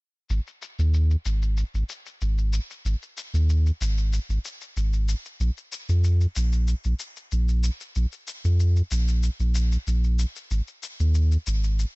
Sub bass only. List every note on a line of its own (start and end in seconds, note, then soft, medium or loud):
0.30 0.40 G#1 medium
0.79 1.16 D#2 medium
1.26 1.64 G#1 medium
1.74 1.83 G#1 medium
2.22 2.60 G#1 medium
2.85 2.95 G#1 medium
3.34 3.71 D#2 medium
3.81 4.19 G#1 medium
4.29 4.39 G#1 medium
4.77 5.15 G#1 medium
5.40 5.50 A#1 medium
5.89 6.27 F2 medium
6.37 6.74 A#1 medium
6.85 6.94 A#1 medium
7.32 7.70 A#1 medium
7.96 8.06 A#1 medium
8.45 8.82 F2 medium
8.91 9.30 A#1 medium
9.40 9.77 A#1 medium
9.87 10.25 A#1 medium
10.51 10.61 G#1 medium
11.00 11.37 D#2 medium
11.47 11.85 G#1 medium